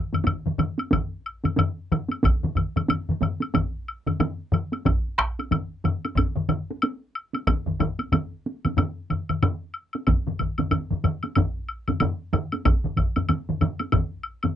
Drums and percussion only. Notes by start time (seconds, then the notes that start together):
0.13 taiko low-mid, taiko mid, taiko high, high woodblock
0.24 taiko low-mid, taiko mid, taiko high, high woodblock
0.46 taiko low-mid, taiko mid
0.58 taiko low-mid, taiko mid, taiko high, high woodblock
0.78 taiko high, high woodblock
0.91 taiko, taiko low-mid, taiko mid, taiko high, high woodblock
1.26 high woodblock
1.44 taiko low-mid, taiko mid, taiko high, high woodblock
1.56 taiko low-mid, taiko mid, taiko high, high woodblock
1.92 taiko low-mid, taiko mid, high woodblock
2.08 taiko high, high woodblock
2.23 taiko, taiko low-mid, taiko mid, taiko high, high woodblock
2.43 taiko low-mid, taiko mid
2.55 taiko, taiko low-mid, taiko mid, high woodblock
2.76 taiko low-mid, taiko mid, taiko high, high woodblock
2.88 taiko low-mid, taiko mid, taiko high, high woodblock
3.09 taiko low-mid, taiko mid
3.21 taiko low-mid, taiko mid, taiko high, high woodblock
3.40 taiko high, high woodblock
3.54 taiko, taiko low-mid, taiko mid, taiko high, high woodblock
3.88 high woodblock
4.07 taiko low-mid, taiko mid, taiko high, high woodblock
4.20 taiko low-mid, taiko mid, taiko high, high woodblock
4.52 taiko low-mid, taiko mid, high woodblock
4.72 taiko high, high woodblock
4.85 taiko, taiko low-mid, taiko mid, taiko high, high woodblock
5.18 taiko rim, taiko, high woodblock
5.39 taiko high, high woodblock
5.51 taiko low-mid, taiko mid, taiko high, high woodblock
5.84 taiko low-mid, taiko mid, taiko high, high woodblock
6.05 taiko high, high woodblock
6.15 taiko, taiko low-mid, taiko mid, taiko high, high woodblock
6.36 taiko low-mid, taiko mid
6.49 taiko low-mid, taiko mid, high woodblock
6.71 taiko high
6.82 taiko high, high woodblock
7.15 high woodblock
7.35 taiko high, high woodblock
7.47 taiko, taiko low-mid, taiko mid, taiko high, high woodblock
7.67 taiko low-mid, taiko mid
7.80 taiko, taiko low-mid, taiko mid, high woodblock
7.99 taiko high, high woodblock
8.12 taiko low-mid, taiko mid, taiko high, high woodblock
8.46 taiko high
8.65 taiko low-mid, taiko mid, taiko high, high woodblock
8.77 taiko low-mid, taiko mid, taiko high, high woodblock
9.10 taiko low-mid, taiko mid, high woodblock
9.29 taiko low-mid, taiko mid, high woodblock
9.42 taiko low-mid, taiko mid, taiko high, high woodblock
9.74 high woodblock
9.93 taiko high, high woodblock
10.07 taiko, taiko low-mid, taiko mid, taiko high, high woodblock
10.27 taiko low-mid, taiko mid
10.39 taiko, taiko low-mid, taiko mid, high woodblock
10.58 taiko low-mid, taiko mid, taiko high, high woodblock
10.71 taiko low-mid, taiko mid, taiko high, high woodblock
10.91 taiko low-mid, taiko mid
11.04 taiko low-mid, taiko mid, taiko high, high woodblock
11.23 taiko high, high woodblock
11.35 taiko, taiko low-mid, taiko mid, taiko high, high woodblock
11.69 high woodblock
11.88 taiko low-mid, taiko mid, taiko high, high woodblock
12.00 taiko low-mid, taiko mid, taiko high, high woodblock
12.33 taiko low-mid, taiko mid, high woodblock
12.52 taiko high, high woodblock
12.65 taiko, taiko low-mid, taiko mid, taiko high, high woodblock
12.84 taiko low-mid, taiko mid
12.97 taiko, taiko low-mid, taiko mid, high woodblock
13.16 taiko low-mid, taiko mid, taiko high, high woodblock
13.29 taiko low-mid, taiko mid, taiko high, high woodblock
13.49 taiko low-mid, taiko mid
13.61 taiko low-mid, taiko mid, taiko high, high woodblock
13.79 taiko high, high woodblock
13.92 taiko, taiko low-mid, taiko mid, taiko high, high woodblock
14.23 high woodblock
14.43 taiko low-mid, taiko mid, taiko high, high woodblock